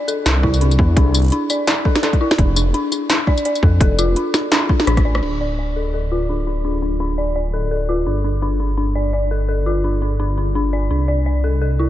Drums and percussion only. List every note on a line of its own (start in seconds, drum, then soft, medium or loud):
0.08 tambourine medium
0.26 snare loud
0.26 closed hi-hat medium
0.43 kick medium
0.54 closed hi-hat soft
0.54 tambourine soft
0.61 closed hi-hat medium
0.71 closed hi-hat soft
0.71 tambourine soft
0.79 kick loud
0.97 kick loud
0.97 closed hi-hat medium
1.14 closed hi-hat soft
1.14 tambourine medium
1.17 closed hi-hat soft
1.19 closed hi-hat soft
1.22 closed hi-hat soft
1.24 closed hi-hat soft
1.26 closed hi-hat soft
1.28 closed hi-hat soft
1.30 closed hi-hat soft
1.32 closed hi-hat medium
1.50 tambourine medium
1.67 snare loud
1.67 closed hi-hat medium
1.85 kick medium
1.95 snare medium
1.95 closed hi-hat soft
2.03 snare medium
2.03 closed hi-hat medium
2.13 kick medium
2.13 closed hi-hat soft
2.31 snare medium
2.38 kick loud
2.38 closed hi-hat medium
2.56 closed hi-hat soft
2.56 tambourine medium
2.74 closed hi-hat medium
2.92 tambourine medium
3.10 snare loud
3.10 closed hi-hat medium
3.27 kick medium
3.38 closed hi-hat soft
3.38 tambourine soft
3.45 closed hi-hat medium
3.55 closed hi-hat soft
3.55 tambourine soft
3.63 kick loud
3.81 kick loud
3.81 closed hi-hat medium
3.99 closed hi-hat soft
3.99 tambourine medium
4.16 closed hi-hat medium
4.34 snare medium
4.34 tambourine medium
4.52 snare loud
4.52 closed hi-hat medium
4.69 kick medium
4.80 snare medium
4.80 closed hi-hat soft
4.87 cross-stick medium
4.87 closed hi-hat medium
4.97 kick medium
4.97 cross-stick medium
4.97 closed hi-hat soft
5.15 cross-stick medium
5.23 crash medium